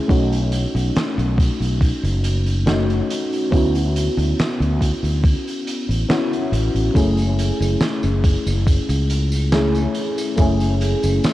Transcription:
Already playing: fm electric piano A3 C#4 E4 G#4
0.08 fretless electric bass B1, fm electric piano A3 C#4 D#4 F#4, kick, closed hi-hat
0.33 closed hi-hat
0.52 closed hi-hat
0.75 fretless electric bass B1, closed hi-hat
0.96 snare, closed hi-hat
1.18 fretless electric bass B1, closed hi-hat
1.38 kick, closed hi-hat
1.60 fretless electric bass B1, closed hi-hat
1.81 kick, closed hi-hat
2.03 fretless electric bass F#1, closed hi-hat
2.24 closed hi-hat
2.46 closed hi-hat
2.66 fm electric piano A3 C#4 D#4 F#4, snare, closed hi-hat
2.90 closed hi-hat
3.10 closed hi-hat
3.33 closed hi-hat
3.51 fretless electric bass D2, fm electric piano B3 C#4 E4 F#4, kick, closed hi-hat
3.75 closed hi-hat
3.96 closed hi-hat
4.17 fretless electric bass D2, closed hi-hat
4.39 snare, closed hi-hat
4.60 fretless electric bass D2, closed hi-hat
4.81 kick, closed hi-hat
5.03 fretless electric bass D2, closed hi-hat
5.24 kick, closed hi-hat
5.47 closed hi-hat
5.67 closed hi-hat
5.89 fretless electric bass A1, closed hi-hat
6.09 fm electric piano B3 C#4 E4 F#4, snare, closed hi-hat
6.33 closed hi-hat
6.52 fretless electric bass A1, closed hi-hat
6.74 fretless electric bass A1, closed hi-hat
6.94 fretless electric bass F#1, fm electric piano A3 C#4 E4 G#4, kick, closed hi-hat, tambourine
7.17 closed hi-hat, tambourine
7.39 closed hi-hat
7.60 fretless electric bass F#1, closed hi-hat, tambourine
7.81 snare, closed hi-hat, tambourine
8.03 fretless electric bass F#1, closed hi-hat, tambourine
8.24 kick, closed hi-hat
8.46 fretless electric bass F#1, closed hi-hat, tambourine
8.67 kick, closed hi-hat, tambourine
8.89 fretless electric bass C#2, closed hi-hat, tambourine
9.10 closed hi-hat
9.32 closed hi-hat, tambourine
9.52 fm electric piano A3 C#4 E4 G#4, snare, closed hi-hat, tambourine
9.75 closed hi-hat, tambourine
9.95 closed hi-hat
10.18 closed hi-hat, tambourine
10.36 fretless electric bass F#1, fm electric piano A3 C#4 E4 G#4, kick, closed hi-hat, tambourine
10.60 closed hi-hat, tambourine
10.81 closed hi-hat
11.03 fretless electric bass F#1, closed hi-hat, tambourine
11.24 snare, closed hi-hat, tambourine

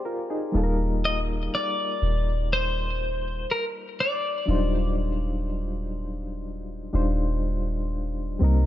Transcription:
Already playing: synth keys G#3 C4 G4 G#4 C5 D5
0.05 synth keys F4 A#4
0.30 synth keys D#4 G#4
0.52 808-style bass D#1, synth keys G3 A#3 D#4 F4
0.57 synth keys A4
0.64 synth keys A#4
1.05 clean electric guitar D#5
1.55 clean electric guitar D5
2.02 808-style bass D#1
2.53 clean electric guitar C5
3.51 clean electric guitar A#4
4.00 clean electric guitar D5
4.46 808-style bass D#1, synth keys F#3 D4 D#4 F4
4.51 synth keys G3 C5
6.93 808-style bass D#1, synth keys G3 D4 D#4 F4 C5
8.39 808-style bass C2, synth keys G3 A#3 C4 D#4
8.44 synth keys A#4

